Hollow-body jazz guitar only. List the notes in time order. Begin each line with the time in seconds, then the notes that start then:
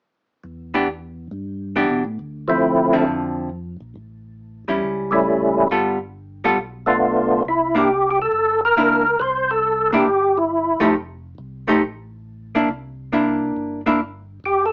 0.74 E3 B3 D4 G4
1.76 E3 B3 D4 G4
2.93 D3 F3 C4 E4
4.68 G3 C#4 E4
5.71 G3 B3 F4 A4
6.44 G3 B3 F4 A4
7.75 A#3 D4 E4
8.77 A#3 D4 E4
9.92 A#3 D4 E4
10.80 F3 A3 D#4 G4
11.67 F3 A3 D#4 G4
12.55 A#3 D4 E4
13.12 A#3 D4 E4
13.86 A#3 D4 E4